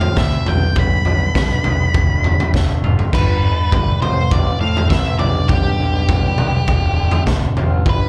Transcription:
Already playing: clean electric guitar A2 A3 C4, lead electric guitar F5
0.01 floor tom
0.16 picked electric bass D2, clean electric guitar E4, lead electric guitar E5, kick, snare, mid tom
0.46 picked electric bass B1, clean electric guitar G2, lead electric guitar G5, floor tom
0.76 picked electric bass B1, clean electric guitar G2, lead electric guitar B5, kick, floor tom
1.05 picked electric bass B1, clean electric guitar D3, floor tom
1.35 picked electric bass B1, clean electric guitar G3, kick, snare, floor tom, mid tom
1.64 picked electric bass B1, clean electric guitar B3, floor tom, mid tom
1.94 picked electric bass D1, clean electric guitar D2, kick, floor tom
2.24 clean electric guitar D3, floor tom
2.40 floor tom, mid tom
2.54 picked electric bass D1, clean electric guitar A3, kick, snare
2.83 picked electric bass F1, clean electric guitar F4, mid tom
2.99 floor tom
3.13 picked electric bass G1, clean electric guitar G2, lead electric guitar B4, kick, floor tom, crash
3.44 clean electric guitar D3
3.72 picked electric bass G1, clean electric guitar G3, kick, floor tom, mid tom
4.02 picked electric bass A1, clean electric guitar A2, lead electric guitar C5, floor tom, mid tom
4.31 picked electric bass A1, clean electric guitar A3, lead electric guitar D5, kick, floor tom
4.61 picked electric bass A2, clean electric guitar C4, lead electric guitar F5
4.77 floor tom
4.90 picked electric bass A1, clean electric guitar E4, lead electric guitar E5, kick, snare, mid tom
5.19 picked electric bass B1, clean electric guitar G2, lead electric guitar D5, floor tom
5.48 picked electric bass B1, clean electric guitar G2, lead electric guitar G4, kick, floor tom
5.80 picked electric bass B1, clean electric guitar D3
6.08 picked electric bass B1, clean electric guitar G3, kick, floor tom, mid tom
6.38 picked electric bass B1, clean electric guitar B3, floor tom, mid tom
6.68 picked electric bass D1, clean electric guitar D2, kick, floor tom
6.97 clean electric guitar D3
7.11 floor tom
7.26 picked electric bass D1, clean electric guitar A3, kick, snare, mid tom
7.57 picked electric bass A1, clean electric guitar F4, floor tom
7.86 picked electric bass G1, clean electric guitar G2, lead electric guitar B4, kick, floor tom

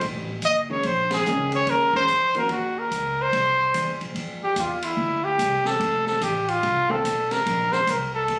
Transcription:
0.01 upright bass B1, kick, ride
0.15 upright bass A1
0.29 upright bass F#1
0.42 upright bass F#1, trumpet D#5, kick, hi-hat pedal, ride
0.70 hollow-body jazz guitar D#3 G#3 C#4, trumpet C#5
0.83 upright bass A#1, trumpet C5, kick, ride
1.11 trumpet G#4, snare, ride
1.25 upright bass C#2, hollow-body jazz guitar D#3 G#3 C#4, hi-hat pedal
1.52 trumpet C#5, ride
1.67 upright bass D#2, trumpet A#4, kick, ride
1.93 hollow-body jazz guitar D#3 G#3 C#4, trumpet C5, kick
2.08 upright bass F2, kick, hi-hat pedal, ride
2.34 hollow-body jazz guitar D#3 A#3 C#4 F#4, trumpet A#4, ride
2.49 upright bass D#2, trumpet F#4, kick, ride
2.79 trumpet A#4
2.91 upright bass C#2, kick, hi-hat pedal, ride
3.22 trumpet C5
3.33 upright bass C2, kick, ride
3.74 upright bass E2, kick, hi-hat pedal, ride
3.88 upright bass C2
4.01 upright bass A#1, ride
4.15 upright bass F2, kick, ride
4.42 trumpet G4, muted upright bass stroke
4.56 upright bass E2, kick, hi-hat pedal, ride
4.60 trumpet F4
4.82 trumpet E4, ride
4.97 upright bass D2, kick
5.24 trumpet G4
5.38 upright bass C2, kick, hi-hat pedal, ride
5.65 trumpet A4, snare
5.80 upright bass F1, kick, ride
6.06 trumpet A4, snare
6.21 upright bass A1, trumpet G4, kick, hi-hat pedal, ride
6.48 trumpet F4, ride
6.63 upright bass C2, kick, ride
6.90 hollow-body jazz guitar D#3 A3 C4, trumpet A4
7.04 upright bass B1, kick, hi-hat pedal, ride
7.31 trumpet A#4, snare, ride
7.46 upright bass A#1, kick, ride
7.72 trumpet C5, snare
7.87 upright bass C2, trumpet A#4, kick, hi-hat pedal, ride
8.15 trumpet A4
8.28 upright bass D2, kick, ride

